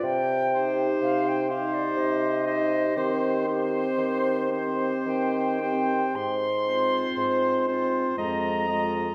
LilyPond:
<<
  \new Staff \with { instrumentName = "Flute" } { \time 3/4 \key c \minor \tempo 4 = 59 g''8. r16 f''16 g''16 f''16 d''16 ees''4 | c''2 g''4 | c'''4.~ c'''16 r16 bes''4 | }
  \new Staff \with { instrumentName = "Oboe" } { \time 3/4 \key c \minor r8 c''4 c''4 c''8 | c''8 c''4 c''4 c''8 | r8 c''4 c''8 ees''8 ees''8 | }
  \new Staff \with { instrumentName = "Clarinet" } { \time 3/4 \key c \minor r8 g'4 g'4 g'8 | g'8 g'4 g'4 g'8 | r8 f'4 f'8 f'8 f'8 | }
  \new Staff \with { instrumentName = "French horn" } { \time 3/4 \key c \minor r8 ees'4 ees'4 ees'8 | c'8 c'4 c'4 c'8 | r8 c'4 c'8 aes8 aes8 | }
  \new Staff \with { instrumentName = "Bassoon" } { \clef bass \time 3/4 \key c \minor c4 c4 c4 | ees4 ees4 ees4 | aes,4 aes,4 f,4 | }
>>